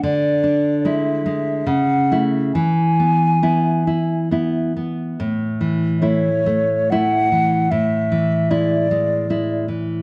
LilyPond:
<<
  \new Staff \with { instrumentName = "Flute" } { \time 3/4 \key a \major \tempo 4 = 72 d''4 e''4 fis''8 r8 | gis''2 r4 | r4 cis''4 fis''4 | e''4 d''4. r8 | }
  \new Staff \with { instrumentName = "Nylon-string guitar" } { \time 3/4 \key a \major d8 d'8 <gis e'>8 gis8 cis8 <a e'>8 | e8 b8 <b e'>8 e'8 <b e'>8 b8 | a,8 e8 <a e'>8 a8 <a e'>8 e8 | a,8 e8 <gis e'>8 gis8 <gis e'>8 e8 | }
>>